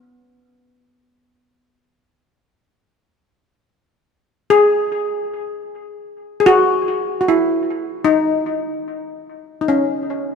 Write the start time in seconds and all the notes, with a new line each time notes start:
Already playing: B3
4.50 G#4
6.40 G#4
6.46 F#4
7.21 F#4
7.28 E4
8.05 D#4
9.61 D#4
9.68 C#4